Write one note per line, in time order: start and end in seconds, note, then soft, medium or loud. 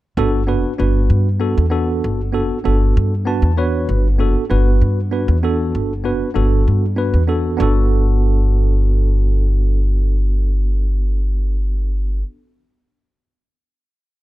0.17 0.49 G1 medium
0.17 0.42 B3 medium
0.17 0.42 D4 medium
0.17 0.42 F#4 medium
0.17 0.43 A4 medium
0.47 0.63 F#1 medium
0.47 0.72 B3 medium
0.47 0.72 D4 medium
0.47 0.72 F#4 medium
0.47 0.73 B4 medium
0.78 1.08 G1 medium
0.78 1.27 B3 medium
0.78 1.27 D4 medium
0.78 1.28 F#4 medium
0.78 1.28 B4 medium
1.10 1.53 G2 medium
1.40 1.65 B3 medium
1.40 1.65 D4 medium
1.40 1.65 F#4 medium
1.40 1.65 A4 medium
1.58 2.00 E2 medium
1.70 2.20 B3 medium
1.70 2.20 D4 medium
1.70 2.20 F#4 medium
1.70 2.20 A4 medium
2.04 2.34 G1 medium
2.33 2.48 F#1 medium
2.33 2.57 B3 medium
2.33 2.58 D4 medium
2.33 2.58 F#4 medium
2.33 2.58 A4 medium
2.64 2.93 G1 medium
2.64 3.13 B3 medium
2.64 3.14 D4 medium
2.64 3.14 F#4 medium
2.64 3.14 A4 medium
2.97 3.39 G2 medium
3.25 3.50 B3 medium
3.25 3.51 D4 medium
3.25 3.51 F#4 medium
3.25 3.51 B4 medium
3.25 3.55 A5 medium
3.42 3.85 E2 medium
3.57 4.06 B3 medium
3.57 4.06 D4 medium
3.57 4.07 F#4 medium
3.57 4.07 B4 medium
3.57 3.86 C#5 medium
3.89 4.19 G1 medium
4.19 4.34 F#1 loud
4.19 4.43 B3 medium
4.19 4.44 D4 medium
4.19 4.44 F#4 medium
4.19 4.44 A4 medium
4.50 4.79 G1 medium
4.50 4.99 B3 medium
4.50 4.99 D4 medium
4.50 5.00 F#4 medium
4.50 4.99 B4 medium
4.82 5.24 G2 medium
5.11 5.36 B3 medium
5.11 5.36 D4 medium
5.11 5.37 F#4 medium
5.11 5.37 B4 medium
5.28 5.71 E2 medium
5.43 5.92 B3 medium
5.43 5.92 D4 medium
5.43 5.92 F#4 medium
5.43 5.93 A4 medium
5.75 6.05 G1 medium
6.04 6.19 F#1 medium
6.04 6.29 B3 medium
6.04 6.29 D4 medium
6.04 6.29 F#4 medium
6.04 6.30 B4 medium
6.34 6.65 G1 medium
6.34 6.84 B3 medium
6.34 6.84 D4 medium
6.34 6.85 F#4 medium
6.34 6.85 A4 medium
6.68 7.10 G2 medium
6.96 7.22 B3 medium
6.96 7.22 D4 medium
6.96 7.22 F#4 medium
6.96 7.23 B4 medium
7.14 7.57 E2 medium
7.27 7.56 B3 medium
7.27 7.57 D4 medium
7.27 7.59 F#4 medium
7.27 7.60 A4 medium
7.57 12.21 G1 medium
7.57 12.18 B3 medium
7.57 12.19 D4 medium
7.57 12.21 F#4 medium
7.62 12.23 A4 medium